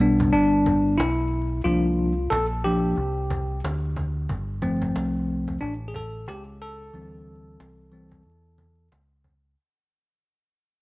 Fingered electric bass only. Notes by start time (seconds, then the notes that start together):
Already playing: B1
0.33 G1
0.99 B1
1.64 C2
2.31 A#1
2.97 C2
3.64 D2
4.30 G1
4.96 C2
5.62 A1
6.27 C#2
6.94 D2
7.60 C2
8.26 E2
8.92 C#2